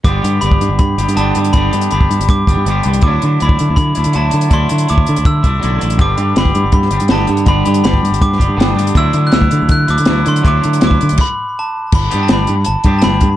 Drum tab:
CC |----------------|----------------|----------------|----------------|
HH |x-x-x-x-x-xxx-xx|x-xxx-xxx-x-x-xx|x-x-x-x-x-xxx-xx|x-xxx-xxx-x-x-xx|
SD |----------------|----------------|----------------|----------------|
BD |o----o--o-------|o----o--o-o-----|o----o--o-------|o----o--o-o-----|

CC |----------------|----------------|----------------|--------x-------|
HH |x-x-x-x-x-xxx-xx|x-xxx-xxx-x-x-xx|x-x-x-x-x-xxx-xx|x-xxx-xx--------|
SD |----o----o--o---|----o----o--o---|----o-------o---|----o-----------|
BD |o----o--o-------|o----o--o-o-----|o----o--o-------|o----o--o-------|

CC |x---------------|
HH |--x-x-x-x-x-x-x-|
SD |----o-------o---|
BD |o---------o---o-|